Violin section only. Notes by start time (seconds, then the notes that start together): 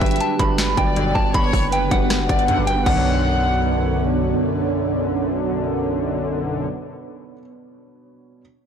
Already playing: E5
0.77 D5
1.34 C#5
1.72 B4
2.29 D5
2.48 F#5
2.67 G5
2.86 F#5